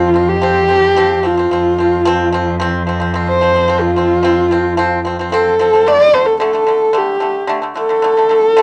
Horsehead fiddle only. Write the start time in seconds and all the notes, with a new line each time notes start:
Already playing: F4
0.28 G4
1.27 F4
3.28 C5
3.81 F4
5.31 A4
5.87 D5
6.14 C5
6.26 A4
6.41 A4
6.98 G4
7.78 A4